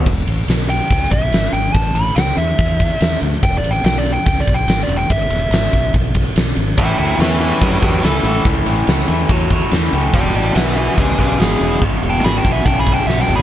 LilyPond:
<<
  \new Staff \with { instrumentName = "Lead electric guitar" } { \time 4/4 \key a \major \tempo 4 = 143 r4. g''4 e''4 g''8 | a''8 b''8 g''8 e''2 r8 | \tuplet 3/2 { g''8 d''8 g''8 g''8 d''8 g''8 g''8 d''8 g''8 g''8 d''8 g''8 } | e''2 r2 |
<e'' g''>8 <e'' g''>8 <b' e''>8 <b' e''>8 <g' b'>8 <g' b'>8 a'4 | r1 | <d'' g''>8 <d'' g''>8 <b' e''>8 <b' e''>8 <g' b'>8 <g' b'>8 gis'4 | \tuplet 3/2 { r4 g''8 b''8 g''8 e''8 g''8 b''8 g''8 e''8 g''8 b''8 } | }
  \new Staff \with { instrumentName = "Lead electric guitar" } { \time 4/4 \key a \major r1 | r1 | r1 | r1 |
e'8 e'8 cis'8 cis'8 g8 g8 e4 | r1 | d'8 d'8 b8 cis'8 gis8 gis8 e4 | \tuplet 3/2 { r4 d'8 gis'8 d'8 cis'8 d'8 gis'8 d'8 b8 d'8 gis'8 } | }
  \new Staff \with { instrumentName = "Overdriven electric guitar" } { \clef bass \time 4/4 \key a \major r1 | r1 | r1 | r1 |
<a, e>8 <a, e>8 <a, e>8 <a, e>8 <a, fis>8 <a, fis>8 <a, e>8 <a, e>8 | <a, e>8 <a, e>8 <a, e>8 <a, e>8 <a, fis>8 <a, fis>8 <a, e>8 <a, e>8 | <e, b,>8 <e, b,>8 <e, b,>8 <e, b,>8 <e, cis>8 <e, cis>8 <e, b,>8 <e, b,>8 | <e, b,>8 <e, b,>8 <e, b,>8 <e, b,>8 <e, cis>8 <e, cis>8 <e, b,>8 <e, b,>8 | }
  \new Staff \with { instrumentName = "Fingered electric bass" } { \clef bass \time 4/4 \key a \major e,,8 a,,8 b,,4 cis,8 b,,8 gis,,8 gis,,8 | a,,8 a,,8 cis,8 e,8 e,4 e,8 d,8 | e,,8 a,,8 b,,4 cis,8 b,,8 gis,,8 e,,8 | gis,,8 e,,8 gis,,8 b,,8 b,,4 b,,8 gis,,8 |
a,,8 d,8 e,4 fis,8 e,8 cis,8 a,,8 | cis,8 a,,8 cis,8 e,8 e,4 e,8 cis,8 | e,,8 a,,8 b,,4 cis,8 b,,8 gis,,8 e,,8 | gis,,8 e,,8 gis,,8 b,,8 b,,4 b,,8 gis,,8 | }
  \new DrumStaff \with { instrumentName = "Drums" } \drummode { \time 4/4 <cymc bd>8 cymr8 <cymr sn>8 cymr8 <bd cymr>16 sn16 <bd cymr>8 <cymr sn>8 cymr8 | <bd cymr>8 cymr8 <cymr sn>8 cymr8 <bd cymr>8 <bd cymr>8 <cymr sn>8 cymr8 | <bd cymr>8 cymr8 <cymr sn>8 cymr8 <bd cymr>16 sn16 <bd cymr>8 <cymr sn>8 cymr8 | <bd cymr>8 cymr8 <cymr sn>8 <bd cymr>8 <bd cymr>8 <bd cymr>8 <cymr sn>8 cymr8 |
<bd cymr>8 cymr8 <cymr sn>8 cymr8 <bd cymr>16 sn16 <bd cymr>8 <cymr sn>8 cymr8 | <bd cymr>8 cymr8 <cymr sn>8 cymr8 <bd cymr>8 <bd cymr>8 <cymr sn>8 cymr8 | <bd cymr>8 cymr8 <cymr sn>8 cymr8 <bd cymr>16 sn16 <bd cymr>8 <cymr sn>8 cymr8 | <bd cymr>8 cymr8 <cymr sn>8 <bd cymr>8 <bd cymr>8 <bd cymr>8 sn16 tommh16 toml8 | }
>>